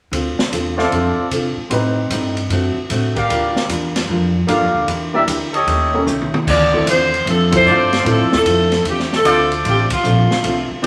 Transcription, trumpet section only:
0.77 1.28 A4 medium
0.77 1.28 C5 medium
0.77 1.28 D5 medium
0.77 1.28 F5 medium
3.15 3.66 G4 medium
3.15 3.66 A#4 medium
3.15 3.66 D5 medium
3.15 3.66 F5 medium
4.48 4.88 G4 medium
4.48 4.88 D5 soft
4.48 4.88 F5 medium
5.14 5.23 G4 medium
5.14 5.23 A#4 medium
5.14 5.23 D5 medium
5.14 5.23 E5 medium
5.53 6.04 G4 medium
5.53 6.04 A4 medium
5.53 6.04 C#5 medium
5.53 6.04 D#5 medium
7.66 8.27 F4 medium
7.66 8.27 A4 medium
7.66 8.27 C5 medium
7.66 8.27 D5 medium
9.25 9.86 F4 medium
9.25 9.85 A4 medium
9.25 9.85 C5 medium
9.25 9.85 D5 medium
10.83 10.87 F4 medium
10.83 10.87 A4 medium
10.83 10.87 C5 medium
10.83 10.87 D5 medium

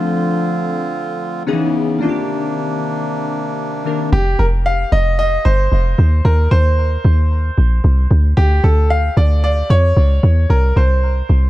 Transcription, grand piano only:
4.13 4.37 G4 loud
4.39 4.45 A#4 loud
4.66 4.93 F5 loud
4.92 5.17 D#5 loud
5.19 5.43 D#5 loud
5.45 6.27 C5 loud
6.25 6.50 A#4 loud
6.51 8.07 C5 loud
8.37 8.64 G4 loud
8.64 8.91 A4 medium
8.90 9.18 F5 loud
9.17 9.42 D5 loud
9.44 9.68 D5 loud
9.70 10.52 C#5 loud
10.50 10.77 A#4 loud
10.77 11.50 C5 medium

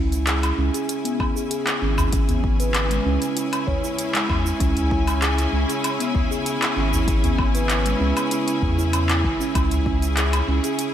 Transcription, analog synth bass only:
0.00 0.52 C#2 medium
0.58 0.70 C#2 medium
1.82 2.99 G#1 loud
3.06 3.18 C#2 medium
4.29 4.53 E2 medium
4.60 5.47 C#2 medium
5.53 5.65 C#2 medium
6.77 7.94 G#1 loud
8.01 8.12 C#2 medium
8.62 9.26 E2 loud
9.24 9.36 G#1 medium
9.55 10.42 C#2 loud
10.48 10.60 C#2 medium

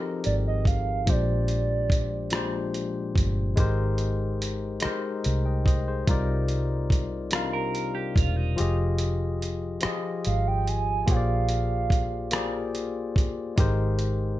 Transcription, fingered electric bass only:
0.26 1.05 G#1 medium
1.08 3.12 A#1 medium
3.17 3.54 G1 medium
3.58 4.79 G#1 medium
4.85 muted fingered electric bass stroke soft
5.26 6.04 C2 medium
6.09 8.12 C2 medium
8.17 8.54 E1 medium
8.60 9.80 F1 medium
9.85 muted fingered electric bass stroke soft
10.27 11.05 G#1 medium
11.09 13.17 A#1 medium
13.17 13.54 G1 medium
13.59 14.40 G#1 medium

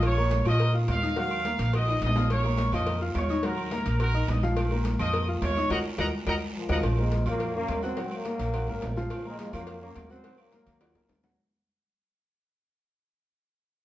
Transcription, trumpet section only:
0.05 0.44 C#5 loud
0.05 0.43 C#6 medium
0.48 0.73 D#5 loud
0.48 0.73 D#6 medium
0.90 1.15 F5 loud
1.18 1.70 F5 loud
1.75 2.01 D#5 loud
1.75 2.01 D#6 medium
2.03 2.28 D#5 loud
2.03 2.28 D#6 medium
2.31 2.70 C#5 loud
2.31 2.70 C#6 medium
2.74 3.00 D#5 medium
2.74 3.00 D#6 medium
3.16 3.42 C#5 medium
3.16 3.42 C#6 medium
3.44 3.99 A#4 medium
3.44 4.00 A#5 medium
4.00 4.27 A#4 loud
4.00 4.27 A#5 medium
4.29 4.43 D#5 medium
4.29 4.43 D#6 medium
5.00 5.26 D#5 loud
5.00 5.26 D#6 medium
5.43 5.69 C#5 loud
5.43 5.69 C#6 medium
5.70 5.77 D#5 medium
5.70 5.77 F#5 medium
5.70 5.77 A#5 medium
5.99 6.06 D#5 loud
5.99 6.06 F#5 loud
5.99 6.06 A#5 loud
6.27 6.34 D#5 loud
6.27 6.34 F#5 loud
6.27 6.34 A#5 loud
6.70 6.77 D#5 loud
6.70 6.77 F#5 loud
6.70 6.77 A#5 loud

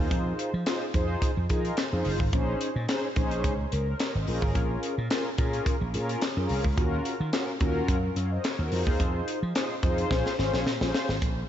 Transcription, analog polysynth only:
0.00 0.50 D#4 medium
0.00 0.51 F4 medium
0.00 0.51 G#4 medium
0.00 0.54 C5 medium
0.66 0.85 D#4 medium
0.66 0.85 F4 medium
0.66 0.85 G#4 medium
0.66 0.85 C5 medium
0.94 1.31 D#4 medium
0.94 1.31 F4 medium
0.94 1.31 G#4 medium
0.94 1.31 C5 loud
1.49 1.77 D#4 medium
1.49 1.77 F4 medium
1.49 1.77 G#4 medium
1.49 1.77 A#4 medium
1.92 2.19 D#4 medium
1.92 2.19 F4 medium
1.92 2.19 G#4 medium
1.92 2.19 C5 medium
2.33 2.69 C#4 medium
2.33 2.70 D#4 medium
2.33 2.70 G#4 medium
2.33 2.70 C5 medium
2.88 3.07 C#4 medium
2.88 3.07 D#4 medium
2.88 3.07 G#4 medium
2.88 3.07 C5 loud
3.16 3.53 C#4 loud
3.16 3.53 D#4 medium
3.16 3.53 G#4 medium
3.16 3.53 C5 loud
3.72 3.98 A#4 medium
4.00 4.14 A#4 medium
4.00 4.14 C#5 medium
4.15 4.41 C5 medium
4.15 4.41 D#5 medium
4.27 4.95 C#4 medium
4.27 4.95 F4 medium
4.27 4.95 G#4 medium
4.27 4.95 A#4 medium
5.11 5.29 C#4 medium
5.11 5.30 F4 medium
5.11 5.30 G#4 medium
5.11 5.30 A#4 medium
5.38 5.75 C#4 medium
5.38 5.75 F4 medium
5.38 5.75 G#4 medium
5.38 5.75 A#4 medium
5.94 6.21 C#4 loud
5.94 6.21 F4 medium
5.94 6.21 G#4 medium
5.94 6.21 A#4 loud
6.37 6.64 C#4 medium
6.37 6.64 F4 medium
6.37 6.64 G#4 medium
6.37 6.64 A#4 medium
6.77 7.14 C#4 medium
6.77 7.14 F4 medium
6.77 7.14 F#4 medium
6.77 7.14 A#4 loud
7.33 7.52 C#4 medium
7.33 7.52 F4 medium
7.33 7.52 F#4 medium
7.33 7.52 A#4 medium
7.60 7.97 C#4 loud
7.60 7.97 F4 medium
7.60 7.97 F#4 medium
7.60 7.98 A#4 loud
8.17 8.31 C#5 medium
8.17 8.31 F5 medium
8.31 8.44 C5 medium
8.31 8.44 D#5 medium
8.44 8.58 A#4 medium
8.44 8.58 C#5 medium
8.59 8.86 F#4 medium
8.59 8.85 A#4 medium
8.71 9.39 D#4 medium
8.71 9.39 F4 medium
8.71 9.39 G#4 medium
8.71 9.40 C5 medium
9.55 9.74 D#4 medium
9.55 9.74 F4 medium
9.55 9.74 G#4 medium
9.55 9.74 C5 medium
9.83 10.11 D#4 medium
9.83 10.09 F4 medium
9.83 10.09 G#4 medium
9.83 10.10 C5 loud
10.10 10.33 C#4 medium
10.10 10.33 F4 medium
10.10 10.33 G#4 medium
10.10 10.33 C5 loud
10.38 10.66 C#4 medium
10.38 10.66 F4 medium
10.38 10.66 G#4 medium
10.38 10.66 C5 loud
10.81 11.08 C#4 loud
10.81 11.08 F4 medium
10.81 11.08 G#4 medium
10.81 11.08 C5 loud

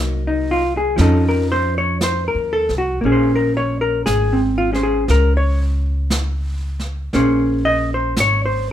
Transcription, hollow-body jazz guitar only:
0.00 0.96 F#3 medium
0.00 0.98 A#3 soft
0.00 0.26 D#4 soft
0.27 0.62 D#4 medium
0.51 0.74 F4 medium
0.77 0.95 G#4 medium
0.96 3.01 F3 medium
0.96 3.03 C#4 medium
1.01 2.52 D#4 medium
1.01 1.28 A4 medium
1.29 1.51 A#4 medium
1.52 1.75 C5 loud
1.78 1.97 C#5 medium
2.03 2.27 C5 medium
2.28 2.65 A#4 medium
2.53 2.77 A4 loud
2.78 2.98 F#4 medium
3.01 7.12 A#3 medium
3.01 4.71 C#4 medium
3.06 3.35 G#4 medium
3.12 4.74 C5 medium
3.36 3.56 A#4 medium
3.57 3.81 C#5 loud
3.81 4.01 A#4 medium
4.06 4.39 G#4 medium
4.33 4.70 C4 medium
4.58 4.73 F4 medium
4.73 7.13 C#4 soft
4.73 4.82 G#4 soft
4.73 7.14 C5 soft
4.83 5.04 G#4 medium
5.11 5.37 A#4 medium
5.37 5.59 C#5 medium
7.14 8.72 A#3 medium
7.14 8.72 C#4 medium
7.14 8.72 G#4 soft
7.14 7.65 C5 medium
7.65 7.90 D#5 loud
7.94 8.14 C5 medium
8.20 8.45 C#5 loud
8.46 8.71 C5 medium

